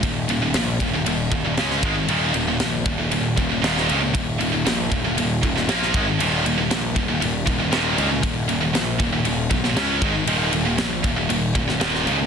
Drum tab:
RD |x-x-x-x-x-x-x-x-|x-x-x-x-x-x-x-x-|x-x-x-x-x-x-x-x-|x-x-x-x-x-x-x-x-|
SD |----o-------oo--|----o-------oo--|----o------ooo--|----o-------o---|
BD |o-----o---o---o-|------o---o-----|o-----o---o---o-|------o---o-----|

RD |x-x-x-x-x-x-x-x-|x-x-x-x-x-x-x-x-|
SD |----o------oo---|----o------ooo--|
BD |o-----o---o---o-|------o---o-----|